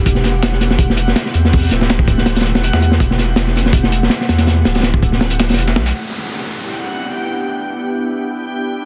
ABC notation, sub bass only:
X:1
M:4/4
L:1/16
Q:"Swing 16ths" 1/4=163
K:Em
V:1 name="Sub bass" clef=bass
E,,,12 z2 E,,2- | E,,2 D,,,8- D,,, E,,,2 E,,3 | E,,,12 z2 E,,2- | E,,2 D,,,8- D,,, E,,,3 B,,,2 |
z16 | z16 |]